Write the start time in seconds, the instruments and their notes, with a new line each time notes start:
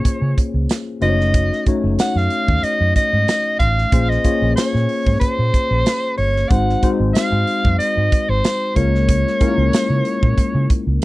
Already playing: tine electric piano A#3 C#4 F4 G#4 C5 C#5, soprano saxophone C#5
0.05 muted fingered electric bass stroke, kick, closed hi-hat
0.22 fingered electric bass C#3
0.38 kick, closed hi-hat
0.54 fingered electric bass C#2
0.69 snare, closed hi-hat, tambourine
1.01 fingered electric bass F#1, tine electric piano A3 C#4 D#4 F#4 C5, soprano saxophone D#5, closed hi-hat
1.09 tine electric piano C#5
1.20 snare
1.34 kick, closed hi-hat
1.53 snare
1.66 tine electric piano A3 C#4 D#4 F#4 C#5, kick, closed hi-hat
1.84 fingered electric bass F#1
1.98 soprano saxophone F#5, muted fingered electric bass stroke, snare, closed hi-hat, tambourine
2.15 fingered electric bass F#2, soprano saxophone F5, snare
2.30 closed hi-hat
2.48 fingered electric bass D#2, kick
2.63 soprano saxophone D#5, muted fingered electric bass stroke, closed hi-hat
2.80 fingered electric bass F#2
2.96 soprano saxophone D#5, kick, closed hi-hat
3.13 fingered electric bass G#2
3.28 snare, closed hi-hat, tambourine
3.59 fingered electric bass A1, soprano saxophone F5, kick, closed hi-hat
3.78 snare
3.92 fingered electric bass A#1, tine electric piano A#3 C#4 F4 G#4 C5, kick, closed hi-hat
4.09 soprano saxophone D#5, snare
4.24 tine electric piano A#3 C#4 F4 G#4 C#5, kick, closed hi-hat
4.42 fingered electric bass A#1
4.56 soprano saxophone C#5, snare, closed hi-hat, tambourine
4.75 fingered electric bass A#2, snare
4.89 open hi-hat
5.06 fingered electric bass G#2, kick
5.20 soprano saxophone C5, muted fingered electric bass stroke, kick, closed hi-hat
5.39 fingered electric bass A#2
5.54 kick, closed hi-hat
5.71 fingered electric bass A#1
5.86 snare, closed hi-hat, tambourine
6.17 fingered electric bass G1, soprano saxophone C#5, open hi-hat
6.36 snare
6.49 fingered electric bass G#1, tine electric piano G#3 C4 D#4 F#4 C5, soprano saxophone F#5, kick, closed hi-hat
6.69 snare
6.83 tine electric piano G#3 C4 D#4 F#4 C5, kick, closed hi-hat
7.00 fingered electric bass G#1
7.14 soprano saxophone F5, snare, closed hi-hat, tambourine
7.32 fingered electric bass G#2
7.47 closed hi-hat
7.65 fingered electric bass F#2, kick
7.78 soprano saxophone D#5, muted fingered electric bass stroke, closed hi-hat
7.97 fingered electric bass G#2
8.12 kick, closed hi-hat
8.29 fingered electric bass G#1, soprano saxophone C5
8.44 snare, closed hi-hat, tambourine
8.75 fingered electric bass C#2, tine electric piano G#3 A#3 C#4 F4 A#4, soprano saxophone C#5, kick, closed hi-hat
8.95 snare
9.09 kick, closed hi-hat
9.27 snare
9.40 tine electric piano G#3 A#3 C#4 E4 A#4, kick, closed hi-hat
9.47 tine electric piano F4
9.58 fingered electric bass C#2
9.73 snare, closed hi-hat, tambourine
9.90 fingered electric bass C#3
10.05 closed hi-hat
10.23 fingered electric bass A#2, kick
10.38 kick, closed hi-hat
10.55 fingered electric bass C#3
10.70 kick, closed hi-hat
10.87 fingered electric bass C#2